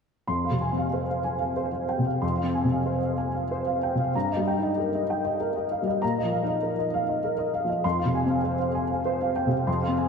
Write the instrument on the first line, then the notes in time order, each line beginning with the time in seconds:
upright piano
0.27 F2 C6
0.45 F5
0.51 C3
0.61 G#5
0.72 C4
0.77 F5
0.93 C5
1.09 F5
1.24 G#5
1.40 F5
1.56 C5
1.73 F5
1.89 G5
1.99 C3
2.06 F5
2.21 F2 C6
2.37 F5
2.43 C4
2.55 G#5
2.64 C3
2.70 F5
2.86 C5
3.02 F5
3.18 G#5
3.34 F5
3.51 C5
3.67 F5
3.83 G5
3.95 C3
3.99 F5
4.15 G2 A#5
4.32 D#5
4.37 G3
4.48 G5
4.58 D#4
4.63 D#5
4.79 A#4
4.95 D#5
5.10 G5
5.25 D#5
5.40 A#4
5.56 D#5
5.71 F5
5.82 G3
5.87 D#5
6.02 A#2 A#5
6.18 D#5
6.23 F3
6.32 F5
6.43 D#4
6.48 D#5
6.63 A#4
6.79 D#5
6.94 F5
7.09 D#5
7.24 A#4
7.38 D#5
7.54 F5
7.64 F3
7.69 D#5
7.84 F2 C6
7.99 F5
8.05 C3
8.15 G#5
8.25 C4
8.29 F5
8.44 C5
8.60 F5
8.75 G#5
8.91 F5
9.05 C5
9.21 F5
9.36 G5
9.47 C3
9.51 F5
9.67 F2 C6
9.82 F5
9.88 C4
9.98 G#5